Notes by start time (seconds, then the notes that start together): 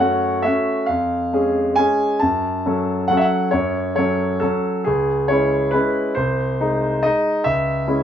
Already playing: F#2 C#5 F#5
0.00 A3 C#4 F#4
0.42 A3 C#4 F#4 E5
0.86 F2 F5
1.33 G#3 C#4 G#4
1.75 G#3 C#4 G#4 G#5
2.20 F#2 A5
2.66 F#3 C#4 A4
3.08 F#3 C#4 A4 F#5
3.17 E5
3.21 F#5
3.51 F#2 C#5
3.96 F#3 C#4 A4 C#5
4.40 F#3 C#4 A4
4.84 C#2 G#4
5.28 G#3 C#4 E4 C#5
5.71 G#3 C#4 E4 B4
6.15 C2 C5
6.61 G#3 D#4
7.03 G#3 D#4 D#5
7.44 C#2 E5
7.87 G#3 C#4 E4